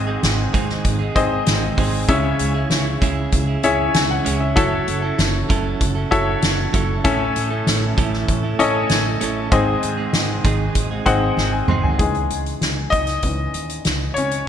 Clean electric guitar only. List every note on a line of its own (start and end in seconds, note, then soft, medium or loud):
0.07 0.53 G#3 soft
0.07 0.53 C4 medium
0.07 0.53 D#4 medium
0.07 0.54 G#4 medium
0.53 1.00 G#2 medium
0.53 1.00 D#3 loud
0.53 1.00 G#3 medium
0.53 1.00 C4 medium
0.53 0.99 D#4 medium
0.53 0.98 G#4 medium
0.99 1.77 G#3 soft
0.99 1.77 C4 medium
0.99 1.78 D#4 medium
0.99 1.80 G#4 medium
1.77 2.07 G#3 medium
1.77 2.08 C4 medium
1.77 2.09 D#4 medium
1.77 2.09 G#4 medium
2.08 2.55 G#3 medium
2.08 2.55 C#4 medium
2.08 2.55 E4 medium
2.08 2.53 G#4 medium
2.54 3.01 C#4 soft
2.54 3.02 E4 medium
2.54 3.01 G#4 medium
3.01 3.48 C#3 medium
3.01 3.49 G#3 medium
3.01 3.49 C#4 medium
3.01 3.48 E4 loud
3.01 3.46 G#4 loud
3.47 4.25 C#4 soft
3.47 4.26 E4 medium
3.47 4.25 G#4 medium
4.25 4.56 G#3 medium
4.25 4.56 C#4 medium
4.25 4.57 E4 medium
4.25 4.58 G#4 medium
4.56 5.03 F#3 medium
4.56 5.03 C#4 medium
4.56 5.03 E4 medium
4.56 5.01 A4 medium
5.02 5.49 C#4 soft
5.02 5.49 E4 medium
5.02 5.49 A4 medium
5.49 5.96 F#3 medium
5.49 5.96 C#4 medium
5.49 5.95 E4 medium
5.49 5.94 A4 loud
5.95 6.74 C#4 medium
5.95 6.74 E4 medium
5.95 6.75 A4 medium
6.73 7.04 F#3 medium
6.73 7.04 C#4 medium
6.73 7.05 E4 medium
6.73 7.06 A4 medium
7.04 7.51 A3 medium
7.04 7.51 C#4 medium
7.04 7.51 E4 medium
7.04 7.49 A4 medium
7.51 7.97 A3 medium
7.51 7.97 C#4 medium
7.51 7.97 E4 medium
7.51 7.97 A4 medium
7.97 8.44 A2 medium
7.97 8.44 E3 medium
7.97 8.44 A3 loud
7.97 8.44 C#4 loud
7.97 8.43 E4 medium
7.97 8.42 A4 medium
8.43 9.20 A3 medium
8.43 9.21 C#4 soft
8.43 9.21 E4 medium
8.43 9.21 A4 medium
9.21 9.51 A3 medium
9.21 9.52 C#4 medium
9.21 9.53 E4 medium
9.21 9.53 A4 medium
9.52 9.98 G#3 medium
9.52 9.98 C4 medium
9.52 9.97 D#4 medium
9.52 9.96 G#4 medium
9.97 10.44 G#3 medium
9.97 10.44 C4 soft
9.97 10.45 D#4 soft
9.97 10.44 G#4 medium
10.44 10.91 G#2 medium
10.44 10.91 D#3 medium
10.44 10.92 G#3 medium
10.44 10.92 C4 medium
10.44 10.91 D#4 medium
10.44 10.90 G#4 loud
10.91 11.68 G#3 soft
10.91 11.68 C4 medium
10.91 11.70 D#4 medium
10.91 11.71 G#4 medium
11.68 11.99 G#3 medium
11.68 12.00 C4 medium
11.68 12.01 D#4 medium
11.68 12.01 G#4 medium